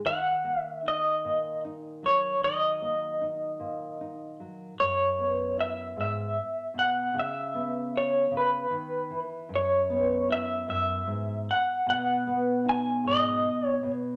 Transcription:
Already playing: D#4
0.05 D#3 F#5
0.44 A#3
0.60 E5
0.85 D#4 D#5
1.24 A#2
1.65 D#4
2.03 F#3 C#5
2.42 D#3 D#5
2.82 A#3
3.21 D#4
3.60 A#2
4.01 D#4
4.40 F#3
4.80 F#2 C#5
5.19 B3
5.57 E4 E5
5.96 G#2
6.01 E5
6.74 B2
6.79 F#5
7.14 C#3
7.19 E5
7.54 B3
7.97 C#5
8.31 C#3
8.37 B4
8.70 D#3
9.10 E3
9.49 F#2
9.55 C#5
9.90 B3
10.29 E4 E5
10.68 F#2 E5
11.06 G#2
11.51 F#5
11.86 B2 F#5
12.27 B3
12.65 D#4
12.69 G#5
13.04 G#2 D#5
13.68 C#5
13.83 B2

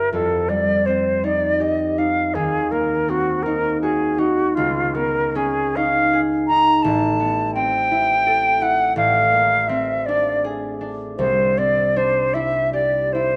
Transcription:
Already playing: G2 G3 A#3 E4 G4 A#4
0.13 F2 A4
0.48 G3 D5
0.85 C4 C5
1.24 D#4 D5
1.60 G4 D#5
1.98 D#4 F5
2.34 D#2 G#4
2.71 A#3 A#4
3.08 C4 F#4
3.42 D#4 A#4
3.81 F#4 G#4
4.18 D#4 F#4
4.54 C#2 F4
4.94 B3 A#4
5.35 C#4 G#4
5.76 D#4 F5
6.13 G#4
6.47 D#4 A#5
6.82 A1 A5
7.20 B3
7.54 C4 G5
7.91 E4
8.27 A4
8.61 E4 F#5
8.96 A1 F5
9.33 A#3
9.67 C4 E5
10.05 D4 D5
10.44 G#4
10.81 D4
11.18 C2 C5
11.57 C4 D5
11.96 D4 C5
12.33 E4 E5
12.73 G4 D5
13.12 E4 C5

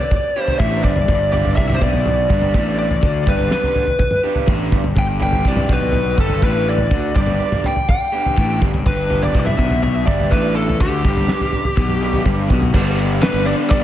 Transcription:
Already playing: D5
0.11 kick, floor tom
0.36 B3 D4 G4
0.42 C5
0.47 floor tom
0.59 A1 A2 B3 D4 G4 E5, kick
0.84 G1 G2 D5, kick
0.96 floor tom
1.08 G1 G2, kick, floor tom
1.32 B3 D4 G4 D5, floor tom
1.45 floor tom
1.56 C2 C3 B3 D4 G4 E5, kick
1.70 floor tom, mid tom
1.74 C5
1.81 B1 B2 D5, kick, floor tom
1.93 floor tom
2.06 floor tom
2.30 G1 G2 B3 D4 G4, kick
2.41 floor tom
2.54 A1 A2 B3 D4 G4, kick
2.79 D5
2.91 floor tom
3.03 D2 D3, kick, floor tom
3.26 G1 G2 B3 D4 G4 B4, kick, floor tom
3.39 floor tom
3.51 B3 D4 G4 B4, snare
3.63 floor tom
3.75 floor tom
3.87 floor tom
3.99 kick, floor tom
4.11 mid tom
4.24 B3 D4 G4
4.35 floor tom
4.47 A1 A2 B3 D4 G4, kick, mid tom
4.72 G1 G2, kick
4.84 floor tom
4.96 G1 G2 G5, kick, floor tom
5.20 B3 D4 G4 G5, floor tom
5.32 floor tom
5.45 C2 C3 B3 D4 G4 D5, kick
5.56 floor tom, mid tom
5.69 B1 B2 B4, kick, floor tom
5.80 floor tom
5.92 floor tom
6.18 G1 G2 B3 D4 G4 A4, kick
6.29 floor tom
6.42 A1 A2 B3 D4 G4 B4, kick
6.69 D5
6.78 floor tom
6.91 D2 D3, kick, floor tom
7.15 G1 G2 B3 D4 G4 D5, kick, floor tom
7.27 floor tom
7.39 B3 D4 G4
7.52 floor tom, mid tom
7.64 G5, floor tom
7.76 floor tom
7.89 G5, kick, floor tom
8.12 B3 D4 G4
8.26 floor tom
8.37 A1 A2 B3 D4 G4, kick
8.61 G1 G2, kick
8.74 floor tom
8.86 G1 G2 B4, kick, floor tom
9.10 B3 D4 G4, floor tom
9.22 D5, floor tom
9.35 C2 C3 B3 D4 G4, kick
9.40 D5
9.46 E5, floor tom, mid tom
9.58 B1 B2, kick, floor tom
9.71 floor tom
9.83 E5, floor tom
10.07 G1 G2 B3 D4 G4 D5, kick
10.20 floor tom
10.31 A1 A2 B3 D4 G4 B4, kick
10.56 A4
10.69 floor tom
10.80 D2 D3 G4, kick, floor tom
11.05 G1 G2 B3 D4 G4, kick, floor tom
11.17 floor tom
11.28 B3 D4 G4, snare
11.41 floor tom
11.52 floor tom
11.65 floor tom
11.77 B1 B2, kick, floor tom
11.89 mid tom
12.02 B3 D4 G4
12.13 floor tom
12.24 G1 G2 B3 D4 G4, kick, mid tom
12.48 B1 B2, kick
12.62 floor tom
12.73 G1 G2 D3 G3 B3 D4 G4, kick, crash
12.98 D4 G4, closed hi-hat
13.21 D3 G3 B3 D4 G4 B4 B5, snare, closed hi-hat
13.34 G1
13.46 B3 D4 G4 D5 D6, closed hi-hat
13.50 G3
13.70 D3 G3 B3 D4 G4 D5 D6, kick, closed hi-hat

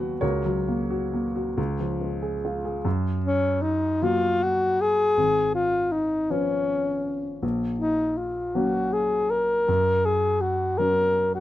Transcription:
Already playing: D#2 F#3 B3 B4 D#5 F#5
0.00 F#4
0.21 C#2 F#4 A#4 C#5
0.45 F#3
0.68 A#3
0.90 F#4
1.13 A#3
1.36 F#4
1.57 C#2
1.80 F3
2.01 G#3
2.22 G#4
2.45 F4
2.65 G#4
2.85 F#2
3.24 C#4
3.62 D#4
4.02 F#3 A#3 F4 F#4
4.43 F#4
4.81 G#4
5.17 G#1
5.55 F4
5.92 D#4
6.30 F3 B3 C#4
7.43 A#1
7.79 D#4
8.17 F4
8.55 F#3 A#3 C#4 F#4
8.93 G#4
9.30 A#4
9.68 F#2
10.05 G#4
10.41 F#4
10.78 F#3 C#4 A#4
11.35 F#4

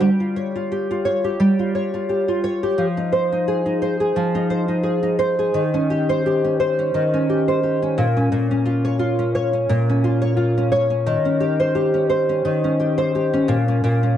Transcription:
0.00 G3
0.20 F4
0.36 C#5
0.55 F4
0.72 G4
0.91 F4
1.05 C#5
1.24 G4
1.40 G3
1.59 F4
1.75 C#5
1.94 F4
2.09 G4
2.28 F4
2.44 C#5
2.63 G4
2.78 F3
2.97 D#4
3.12 C5
3.32 D#4
3.48 G#4
3.66 D#4
3.82 C5
4.00 G#4
4.16 F3
4.35 D#4
4.50 C5
4.68 D#4
4.83 G#4
5.03 D#4
5.19 C5
5.39 G#4
5.54 D#3
5.74 C#4
5.90 G4
6.09 C5
6.26 G4
6.45 C#4
6.60 C5
6.79 C#4
6.94 D#3
7.14 C#4
7.29 G4
7.48 C5
7.63 G4
7.82 C#4
7.98 A#2
8.17 C#4
8.32 A#2
8.51 C#4
8.66 F4
8.85 C#5
8.99 F4
9.19 C#4
9.35 C#5
9.53 C#4
9.69 A#2
9.89 C#4
10.04 F4
10.22 C#5
10.37 F4
10.58 C#4
10.72 C#5
10.90 C#4
11.06 D#3
11.25 C#4
11.40 G4
11.60 C5
11.75 G4
11.94 C#4
12.10 C5
12.29 C#4
12.45 D#3
12.64 C#4
12.80 G4
12.98 C5
13.15 G4
13.34 C#4
13.48 A#2
13.68 C#4
13.84 A#2
14.03 C#4

